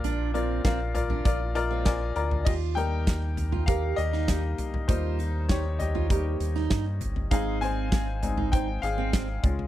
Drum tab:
CC |----------------|x---------------|----------------|----------------|
HH |x-x-x-x-x-x-x-x-|--x-x-x-x-x-x-x-|x-x-x-x-x-x-x-x-|x-x-x-x-x-x-x-x-|
SD |----o-------o---|----o------oo---|----o------oo---|----o-------o---|
FT |------oo-------o|------oo------oo|------oo------oo|------oo------oo|
BD |----o---o---o---|o---o---o---o---|o---o---o---o---|o---o---o---o-o-|